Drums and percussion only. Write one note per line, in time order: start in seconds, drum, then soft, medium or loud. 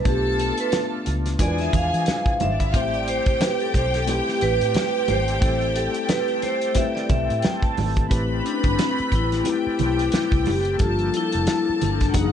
0.05 kick loud
0.05 closed hi-hat medium
0.05 muted conga soft
0.40 closed hi-hat medium
0.58 closed hi-hat medium
0.72 snare loud
0.72 closed hi-hat medium
0.72 high conga medium
1.06 closed hi-hat medium
1.06 muted conga soft
1.26 snare soft
1.26 closed hi-hat medium
1.39 kick medium
1.39 closed hi-hat medium
1.39 muted conga medium
1.58 snare soft
1.58 closed hi-hat soft
1.73 kick medium
1.73 closed hi-hat medium
1.73 low conga medium
1.94 closed hi-hat medium
2.06 snare medium
2.06 closed hi-hat medium
2.06 high conga medium
2.26 kick loud
2.26 closed hi-hat soft
2.40 closed hi-hat medium
2.40 high conga medium
2.60 kick medium
2.60 closed hi-hat medium
2.74 kick loud
2.74 closed hi-hat medium
2.74 muted conga soft
2.94 closed hi-hat soft
3.08 closed hi-hat medium
3.26 kick loud
3.26 closed hi-hat medium
3.41 snare loud
3.41 closed hi-hat loud
3.41 high conga medium
3.60 closed hi-hat soft
3.74 kick medium
3.74 closed hi-hat medium
3.74 muted conga soft
3.94 snare soft
3.94 closed hi-hat medium
4.08 closed hi-hat medium
4.08 muted conga medium
4.29 snare soft
4.41 closed hi-hat medium
4.61 closed hi-hat medium
4.74 snare loud
4.74 closed hi-hat medium
4.74 high conga medium
5.08 closed hi-hat medium
5.08 high conga medium
5.28 closed hi-hat medium
5.42 kick loud
5.42 closed hi-hat medium
5.42 muted conga soft
5.61 closed hi-hat soft
5.76 closed hi-hat medium
5.94 closed hi-hat medium
6.09 snare loud
6.09 closed hi-hat medium
6.09 high conga medium
6.28 closed hi-hat soft
6.42 closed hi-hat medium
6.42 muted conga soft
6.62 closed hi-hat medium
6.75 kick medium
6.75 closed hi-hat loud
6.75 muted conga medium
6.96 snare soft
7.09 kick loud
7.09 closed hi-hat medium
7.09 low conga medium
7.30 closed hi-hat medium
7.42 snare loud
7.42 closed hi-hat medium
7.42 high conga medium
7.62 kick medium
7.62 closed hi-hat soft
7.77 open hi-hat medium
7.77 high conga medium
7.96 kick medium
7.96 closed hi-hat medium
8.11 kick loud
8.11 closed hi-hat medium
8.46 closed hi-hat medium
8.64 kick medium
8.64 closed hi-hat medium
8.79 snare loud
8.79 closed hi-hat medium
8.79 high conga medium
8.98 closed hi-hat soft
9.12 kick medium
9.12 closed hi-hat medium
9.12 muted conga soft
9.32 snare soft
9.32 closed hi-hat medium
9.45 closed hi-hat medium
9.45 muted conga medium
9.79 closed hi-hat medium
9.79 low conga medium
9.99 closed hi-hat medium
10.12 snare loud
10.12 closed hi-hat medium
10.12 high conga medium
10.32 kick loud
10.32 closed hi-hat soft
10.46 open hi-hat medium
10.46 high conga medium
10.65 closed hi-hat medium
10.79 kick loud
10.79 closed hi-hat medium
10.79 muted conga soft
10.99 closed hi-hat soft
11.14 closed hi-hat medium
11.32 closed hi-hat medium
11.47 snare loud
11.47 closed hi-hat loud
11.47 high conga medium
11.81 closed hi-hat medium
11.81 muted conga soft
11.81 low conga medium
12.01 kick medium
12.01 snare soft
12.01 closed hi-hat medium
12.14 kick medium
12.14 closed hi-hat loud
12.14 muted conga medium